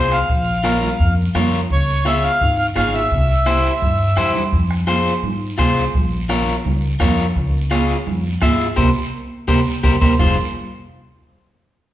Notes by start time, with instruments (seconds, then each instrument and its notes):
Already playing: upright bass C2, clean electric guitar F4 G#4 C5, accordion C5
0.11 accordion F5, bombo rim, short guiro
0.29 upright bass A#1, bombo low, long guiro
0.64 clean electric guitar F4 A#4 C#5, bombo rim, high conga, short guiro
0.82 low conga, short guiro
0.99 upright bass F2, bombo low, high conga, long guiro
1.35 upright bass F2, clean electric guitar F4 A#4 C#5, bombo rim, high conga, low conga, short guiro
1.53 short guiro
1.70 upright bass C#2, accordion C#5, bombo low, high conga, long guiro
2.05 clean electric guitar F4 G#4 C#5, accordion E5, bombo rim, high conga, short guiro
2.23 accordion F5, short guiro
2.41 upright bass G#1, bombo low, long guiro
2.59 accordion F5
2.76 upright bass G#1, clean electric guitar F4 G#4 C#5, accordion F5, bombo rim, high conga, short guiro
2.94 accordion E5, short guiro
3.11 upright bass C2, bombo low, high conga, long guiro
3.46 clean electric guitar E4 G4 C5, bombo rim, high conga, short guiro
3.64 short guiro
3.82 upright bass G2, bombo low, low conga, long guiro
4.17 upright bass E2, clean electric guitar E4 G4 C5, bombo rim, low conga, short guiro
4.35 low conga, short guiro
4.53 upright bass F2, bombo low, high conga, long guiro
4.71 bombo rim
4.87 clean electric guitar F4 G#4 C5, bombo rim, high conga, short guiro
5.06 short guiro
5.23 upright bass G#2, high conga, low conga, long guiro
5.58 upright bass C2, clean electric guitar F4 G#4 C5, bombo low, bombo rim, high conga, short guiro
5.77 short guiro
5.94 upright bass A#1, bombo low, high conga, low conga, long guiro
6.29 clean electric guitar F4 A#4 C#5, bombo rim, high conga, short guiro
6.48 short guiro
6.64 upright bass C#2, high conga, low conga, long guiro
7.00 upright bass F2, clean electric guitar F4 A#4 C#5, bombo low, bombo rim, high conga, low conga, short guiro
7.18 short guiro
7.35 upright bass C#2, bombo low, long guiro
7.71 clean electric guitar F4 G#4 C#5, bombo rim, high conga, short guiro
7.89 short guiro
8.07 upright bass F2, high conga, low conga, long guiro
8.42 upright bass G#1, clean electric guitar F4 G#4 E5, bombo low, bombo rim, high conga, short guiro
8.60 short guiro
8.76 upright bass C2, clean electric guitar G4 A#4 C5, bombo low, high conga, long guiro
9.48 upright bass C2, clean electric guitar G4 A#4 C5, bombo low, high conga, long guiro
9.83 upright bass C2, clean electric guitar G4 A#4 C5, bombo low, high conga, long guiro
10.01 upright bass C2, clean electric guitar G4 A#4 C5, bombo low, high conga, long guiro
10.19 upright bass F1, clean electric guitar F4 G#4 C5, bombo low, low conga, long guiro